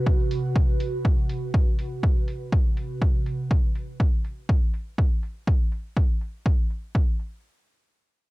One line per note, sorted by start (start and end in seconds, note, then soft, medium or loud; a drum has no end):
0.00 3.47 C3 medium
0.00 3.47 F#4 medium
0.00 3.47 B4 medium
0.06 kick loud
0.31 open hi-hat medium
0.56 kick loud
0.80 open hi-hat medium
1.05 kick loud
1.29 open hi-hat medium
1.54 kick loud
1.79 open hi-hat medium
2.03 kick loud
2.28 open hi-hat medium
2.52 kick loud
2.77 open hi-hat medium
3.02 kick medium
3.26 open hi-hat medium
3.51 kick loud
3.75 open hi-hat medium
4.00 kick medium
4.25 open hi-hat medium
4.49 kick loud
4.74 open hi-hat medium
4.98 kick medium
5.23 open hi-hat medium
5.47 kick loud
5.72 open hi-hat medium
5.97 kick medium
6.21 open hi-hat medium
6.46 kick loud
6.70 open hi-hat medium
6.95 kick loud
7.20 open hi-hat medium